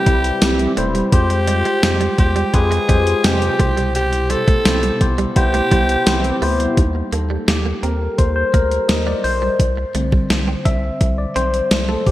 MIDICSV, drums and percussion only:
0, 0, Header, 1, 2, 480
1, 0, Start_track
1, 0, Tempo, 705882
1, 766, Time_signature, 4, 2, 24, 8
1, 8238, End_track
2, 0, Start_track
2, 0, Title_t, "Drums"
2, 43, Note_on_c, 9, 42, 70
2, 45, Note_on_c, 9, 36, 91
2, 111, Note_off_c, 9, 42, 0
2, 113, Note_off_c, 9, 36, 0
2, 165, Note_on_c, 9, 42, 62
2, 233, Note_off_c, 9, 42, 0
2, 283, Note_on_c, 9, 42, 86
2, 283, Note_on_c, 9, 54, 67
2, 285, Note_on_c, 9, 38, 115
2, 351, Note_off_c, 9, 42, 0
2, 351, Note_off_c, 9, 54, 0
2, 353, Note_off_c, 9, 38, 0
2, 404, Note_on_c, 9, 42, 54
2, 472, Note_off_c, 9, 42, 0
2, 525, Note_on_c, 9, 42, 82
2, 593, Note_off_c, 9, 42, 0
2, 645, Note_on_c, 9, 42, 60
2, 713, Note_off_c, 9, 42, 0
2, 765, Note_on_c, 9, 36, 109
2, 765, Note_on_c, 9, 42, 97
2, 833, Note_off_c, 9, 36, 0
2, 833, Note_off_c, 9, 42, 0
2, 885, Note_on_c, 9, 42, 57
2, 953, Note_off_c, 9, 42, 0
2, 1003, Note_on_c, 9, 42, 84
2, 1071, Note_off_c, 9, 42, 0
2, 1124, Note_on_c, 9, 42, 50
2, 1192, Note_off_c, 9, 42, 0
2, 1244, Note_on_c, 9, 54, 70
2, 1245, Note_on_c, 9, 38, 107
2, 1245, Note_on_c, 9, 42, 82
2, 1312, Note_off_c, 9, 54, 0
2, 1313, Note_off_c, 9, 38, 0
2, 1313, Note_off_c, 9, 42, 0
2, 1365, Note_on_c, 9, 42, 59
2, 1433, Note_off_c, 9, 42, 0
2, 1485, Note_on_c, 9, 42, 67
2, 1486, Note_on_c, 9, 36, 94
2, 1553, Note_off_c, 9, 42, 0
2, 1554, Note_off_c, 9, 36, 0
2, 1604, Note_on_c, 9, 42, 55
2, 1672, Note_off_c, 9, 42, 0
2, 1725, Note_on_c, 9, 42, 79
2, 1726, Note_on_c, 9, 36, 85
2, 1793, Note_off_c, 9, 42, 0
2, 1794, Note_off_c, 9, 36, 0
2, 1847, Note_on_c, 9, 42, 55
2, 1915, Note_off_c, 9, 42, 0
2, 1965, Note_on_c, 9, 42, 73
2, 1966, Note_on_c, 9, 36, 91
2, 2033, Note_off_c, 9, 42, 0
2, 2034, Note_off_c, 9, 36, 0
2, 2086, Note_on_c, 9, 42, 62
2, 2154, Note_off_c, 9, 42, 0
2, 2204, Note_on_c, 9, 42, 89
2, 2204, Note_on_c, 9, 54, 62
2, 2206, Note_on_c, 9, 38, 122
2, 2272, Note_off_c, 9, 42, 0
2, 2272, Note_off_c, 9, 54, 0
2, 2274, Note_off_c, 9, 38, 0
2, 2325, Note_on_c, 9, 42, 56
2, 2393, Note_off_c, 9, 42, 0
2, 2445, Note_on_c, 9, 36, 109
2, 2445, Note_on_c, 9, 42, 82
2, 2513, Note_off_c, 9, 36, 0
2, 2513, Note_off_c, 9, 42, 0
2, 2567, Note_on_c, 9, 42, 63
2, 2635, Note_off_c, 9, 42, 0
2, 2686, Note_on_c, 9, 42, 98
2, 2754, Note_off_c, 9, 42, 0
2, 2806, Note_on_c, 9, 42, 58
2, 2874, Note_off_c, 9, 42, 0
2, 2924, Note_on_c, 9, 42, 85
2, 2992, Note_off_c, 9, 42, 0
2, 3044, Note_on_c, 9, 36, 101
2, 3044, Note_on_c, 9, 42, 51
2, 3112, Note_off_c, 9, 36, 0
2, 3112, Note_off_c, 9, 42, 0
2, 3164, Note_on_c, 9, 54, 73
2, 3165, Note_on_c, 9, 38, 105
2, 3165, Note_on_c, 9, 42, 83
2, 3232, Note_off_c, 9, 54, 0
2, 3233, Note_off_c, 9, 38, 0
2, 3233, Note_off_c, 9, 42, 0
2, 3284, Note_on_c, 9, 42, 64
2, 3352, Note_off_c, 9, 42, 0
2, 3406, Note_on_c, 9, 36, 91
2, 3406, Note_on_c, 9, 42, 66
2, 3474, Note_off_c, 9, 36, 0
2, 3474, Note_off_c, 9, 42, 0
2, 3524, Note_on_c, 9, 42, 55
2, 3592, Note_off_c, 9, 42, 0
2, 3645, Note_on_c, 9, 42, 77
2, 3647, Note_on_c, 9, 36, 88
2, 3713, Note_off_c, 9, 42, 0
2, 3715, Note_off_c, 9, 36, 0
2, 3767, Note_on_c, 9, 42, 57
2, 3835, Note_off_c, 9, 42, 0
2, 3885, Note_on_c, 9, 42, 67
2, 3886, Note_on_c, 9, 36, 87
2, 3953, Note_off_c, 9, 42, 0
2, 3954, Note_off_c, 9, 36, 0
2, 4006, Note_on_c, 9, 42, 62
2, 4074, Note_off_c, 9, 42, 0
2, 4124, Note_on_c, 9, 42, 91
2, 4124, Note_on_c, 9, 54, 63
2, 4126, Note_on_c, 9, 38, 114
2, 4192, Note_off_c, 9, 42, 0
2, 4192, Note_off_c, 9, 54, 0
2, 4194, Note_off_c, 9, 38, 0
2, 4246, Note_on_c, 9, 42, 57
2, 4314, Note_off_c, 9, 42, 0
2, 4366, Note_on_c, 9, 46, 83
2, 4434, Note_off_c, 9, 46, 0
2, 4488, Note_on_c, 9, 42, 62
2, 4556, Note_off_c, 9, 42, 0
2, 4606, Note_on_c, 9, 36, 101
2, 4606, Note_on_c, 9, 42, 85
2, 4674, Note_off_c, 9, 36, 0
2, 4674, Note_off_c, 9, 42, 0
2, 4845, Note_on_c, 9, 42, 80
2, 4913, Note_off_c, 9, 42, 0
2, 5086, Note_on_c, 9, 42, 77
2, 5087, Note_on_c, 9, 38, 103
2, 5154, Note_off_c, 9, 42, 0
2, 5155, Note_off_c, 9, 38, 0
2, 5327, Note_on_c, 9, 42, 59
2, 5395, Note_off_c, 9, 42, 0
2, 5566, Note_on_c, 9, 42, 70
2, 5567, Note_on_c, 9, 36, 85
2, 5634, Note_off_c, 9, 42, 0
2, 5635, Note_off_c, 9, 36, 0
2, 5806, Note_on_c, 9, 36, 84
2, 5806, Note_on_c, 9, 42, 70
2, 5874, Note_off_c, 9, 36, 0
2, 5874, Note_off_c, 9, 42, 0
2, 5926, Note_on_c, 9, 42, 60
2, 5994, Note_off_c, 9, 42, 0
2, 6044, Note_on_c, 9, 42, 86
2, 6046, Note_on_c, 9, 38, 107
2, 6112, Note_off_c, 9, 42, 0
2, 6114, Note_off_c, 9, 38, 0
2, 6285, Note_on_c, 9, 46, 71
2, 6353, Note_off_c, 9, 46, 0
2, 6525, Note_on_c, 9, 36, 103
2, 6526, Note_on_c, 9, 42, 89
2, 6593, Note_off_c, 9, 36, 0
2, 6594, Note_off_c, 9, 42, 0
2, 6764, Note_on_c, 9, 42, 79
2, 6832, Note_off_c, 9, 42, 0
2, 6884, Note_on_c, 9, 36, 97
2, 6952, Note_off_c, 9, 36, 0
2, 7005, Note_on_c, 9, 42, 81
2, 7006, Note_on_c, 9, 38, 96
2, 7073, Note_off_c, 9, 42, 0
2, 7074, Note_off_c, 9, 38, 0
2, 7245, Note_on_c, 9, 42, 62
2, 7246, Note_on_c, 9, 36, 86
2, 7313, Note_off_c, 9, 42, 0
2, 7314, Note_off_c, 9, 36, 0
2, 7485, Note_on_c, 9, 42, 74
2, 7486, Note_on_c, 9, 36, 86
2, 7553, Note_off_c, 9, 42, 0
2, 7554, Note_off_c, 9, 36, 0
2, 7724, Note_on_c, 9, 42, 71
2, 7792, Note_off_c, 9, 42, 0
2, 7845, Note_on_c, 9, 42, 55
2, 7913, Note_off_c, 9, 42, 0
2, 7963, Note_on_c, 9, 42, 82
2, 7965, Note_on_c, 9, 38, 111
2, 8031, Note_off_c, 9, 42, 0
2, 8033, Note_off_c, 9, 38, 0
2, 8204, Note_on_c, 9, 46, 74
2, 8205, Note_on_c, 9, 36, 89
2, 8238, Note_off_c, 9, 36, 0
2, 8238, Note_off_c, 9, 46, 0
2, 8238, End_track
0, 0, End_of_file